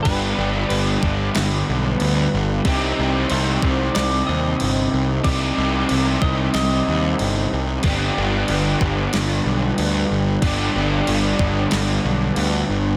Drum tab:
CC |x-x-x-x-|x-x-x-x-|x-x-x-x-|x-x-x-x-|
SD |----o---|----o---|----o---|----o---|
BD |o--o----|o--o----|o--o----|o--o----|

CC |x-x-x-x-|
SD |----o---|
BD |o--o----|